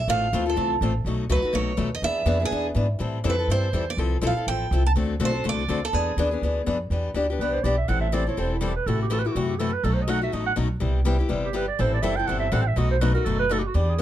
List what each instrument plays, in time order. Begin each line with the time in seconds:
0.07 upright bass A1, steel-string acoustic guitar E3 A3 C4 F4 A4 F5
0.33 upright bass D2, steel-string acoustic guitar E3 A3 C4 F4 A4
0.46 steel-string acoustic guitar C4 F4 A4
0.56 upright bass C2, steel-string acoustic guitar E3 A3 C4 F4 A4
0.81 upright bass A1, steel-string acoustic guitar E3 A3 C4 F4 A4
1.05 upright bass B1, steel-string acoustic guitar B2 F#3 A3 D#4 F#4
1.29 upright bass C#2, steel-string acoustic guitar B2 F#3 A3 D#4 F#4 B4
1.42 steel-string acoustic guitar A3 D#4 F#4, muted upright bass stroke
1.53 upright bass B1, steel-string acoustic guitar B2 F#3 A3 D#4 F#4 C#5
1.77 upright bass D#2, steel-string acoustic guitar B2 F#3 A3 D#4 F#4
1.95 steel-string acoustic guitar D#5
2.02 upright bass E2, steel-string acoustic guitar E3 B3 D4 G#4 E5
2.26 upright bass F2, steel-string acoustic guitar E3 B3 D4 G#4
2.40 steel-string acoustic guitar B3 D4 G#4
2.45 steel-string acoustic guitar G#4
2.51 upright bass E2, steel-string acoustic guitar E3 B3 D4 G#4
2.75 upright bass G#2, steel-string acoustic guitar E3 B3 D4 G#4
2.99 upright bass A2, steel-string acoustic guitar E3 G3 C4 E4 A4
3.24 upright bass F2, steel-string acoustic guitar E3 G3 C4 E4 A4
3.30 steel-string acoustic guitar B4
3.39 steel-string acoustic guitar C4 E4 A4
3.48 upright bass G2, steel-string acoustic guitar E3 G3 C4 E4 A4 C5
3.73 upright bass E2, steel-string acoustic guitar E3 G3 C4 E4 A4
3.90 steel-string acoustic guitar D5
3.97 upright bass C2, steel-string acoustic guitar F3 C4 E4 A4
4.22 upright bass B1, steel-string acoustic guitar F3 C4 E4 A4
4.27 steel-string acoustic guitar F5
4.36 steel-string acoustic guitar C4 E4 A4, muted upright bass stroke
4.47 upright bass A1, steel-string acoustic guitar F3 C4 E4 A4 G5
4.71 upright bass C2, steel-string acoustic guitar F3 C4 E4 A4
4.86 steel-string acoustic guitar A5
4.95 upright bass D2, steel-string acoustic guitar D3 A3 C4 F#4 A4
5.20 upright bass B1, steel-string acoustic guitar D3 A3 C4 F#4 A4
5.25 steel-string acoustic guitar C5
5.32 steel-string acoustic guitar C4 F#4 A4
5.44 upright bass C2, steel-string acoustic guitar D3 A3 C4 F#4 A4
5.49 steel-string acoustic guitar D5
5.68 upright bass D2, steel-string acoustic guitar D3 A3 C4 F#4 A4
5.85 steel-string acoustic guitar A4
5.93 upright bass E2, steel-string acoustic guitar E3 B3 D4 G#4
6.17 upright bass D#2, steel-string acoustic guitar E3 B3 D4 G#4
6.31 steel-string acoustic guitar B3 D4 G#4
6.42 upright bass D2, steel-string acoustic guitar E3 B3 D4 G#4
6.66 upright bass F2, steel-string acoustic guitar E3 B3 D4 G#4
6.90 upright bass E2, steel-string acoustic guitar E3 B3 D4 G4
7.14 upright bass D2, steel-string acoustic guitar E3 B3 D4 G4
7.30 steel-string acoustic guitar B3 D4 G4
7.39 upright bass C2, steel-string acoustic guitar E3 B3 D4 G4, clarinet B4
7.53 clarinet C5
7.63 upright bass B1, steel-string acoustic guitar E3 B3 D4 G4, clarinet D5
7.77 clarinet E5
7.88 upright bass A1, steel-string acoustic guitar E3 G3 C4 E4 A4, clarinet F#5
8.01 clarinet E5
8.12 steel-string acoustic guitar E3 G3 C4 E4 A4, clarinet D5
8.27 steel-string acoustic guitar C4 E4 A4, clarinet C#5
8.37 upright bass E1, steel-string acoustic guitar E3 G3 C4 E4 A4, clarinet C5
8.54 clarinet E4
8.61 steel-string acoustic guitar E3 G3 C4 E4 A4, clarinet G4
8.76 clarinet B4
8.86 upright bass A1, steel-string acoustic guitar C3 E3 A3 E4 F#4, clarinet A4
9.02 clarinet G4
9.10 steel-string acoustic guitar C3 E3 A3 E4 F#4, clarinet A4
9.19 clarinet B4
9.25 steel-string acoustic guitar A3 E4 F#4, clarinet G4
9.33 upright bass F#2, steel-string acoustic guitar C3 E3 A3 E4, clarinet F#4
9.37 steel-string acoustic guitar F#4
9.48 clarinet G4
9.59 steel-string acoustic guitar C3 E3 A3 E4 F#4, clarinet A4
9.73 clarinet B4
9.83 upright bass B1, steel-string acoustic guitar B2 F#3 A3 D#4 F#4, clarinet A4
9.94 clarinet C5
10.02 clarinet D#5
10.07 steel-string acoustic guitar B2 F#3 A3 D#4 F#4, clarinet F#5
10.22 steel-string acoustic guitar A3 D#4 F#4, clarinet E5
10.32 upright bass A1, steel-string acoustic guitar B2 F#3 A3 D#4 F#4, clarinet D#5
10.46 clarinet F#5
10.56 upright bass B1, steel-string acoustic guitar B2 F#3 A3 D#4 F#4
10.80 upright bass C2, steel-string acoustic guitar C3 G3 B3 E4 G4
11.05 steel-string acoustic guitar C3 G3 B3 E4 G4
11.19 steel-string acoustic guitar B3 E4 G4
11.29 upright bass G1, steel-string acoustic guitar C3 G3 B3 E4 G4
11.45 clarinet G4
11.53 steel-string acoustic guitar C3 G3 B3 E4 G4, clarinet B4
11.68 clarinet D5
11.79 upright bass A1, steel-string acoustic guitar E3 G3 C4 E4 A4, clarinet C5
11.94 clarinet D5
12.02 upright bass F#1, steel-string acoustic guitar E3 G3 C4 E4 A4, clarinet E5
12.16 steel-string acoustic guitar C4 E4 A4, clarinet G5
12.27 upright bass G1, steel-string acoustic guitar E3 G3 C4 E4 A4, clarinet F#5
12.40 clarinet E5
12.52 upright bass A1, steel-string acoustic guitar E3 G3 C4 E4 A4, clarinet F#5
12.61 clarinet G5
12.67 clarinet E5
12.76 upright bass B1, steel-string acoustic guitar B2 F#3 A3 D#4 F#4, clarinet D#5
12.91 clarinet C5
13.01 steel-string acoustic guitar B2 F#3 A3 D#4 F#4, clarinet B4
13.14 steel-string acoustic guitar A3 D#4 F#4, clarinet A#4
13.25 upright bass F#1, steel-string acoustic guitar B2 F#3 A3 D#4 F#4, clarinet A4
13.39 clarinet B4
13.49 steel-string acoustic guitar B2 F#3 A3 D#4 F#4, clarinet A4
13.59 clarinet G4
13.68 clarinet F#4
13.74 upright bass E2, steel-string acoustic guitar E3 B3 D4 G4, clarinet G4
13.90 clarinet G#4
13.98 steel-string acoustic guitar E3